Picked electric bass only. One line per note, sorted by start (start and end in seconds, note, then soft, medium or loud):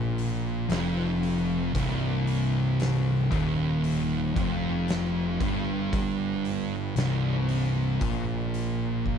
0.00 0.66 A#1 medium
0.69 1.70 F1 loud
1.75 3.27 C1 loud
3.31 4.32 D#1 medium
4.36 5.36 F1 loud
5.40 6.93 G1 loud
6.95 7.96 C1 loud
8.02 9.18 A#1 medium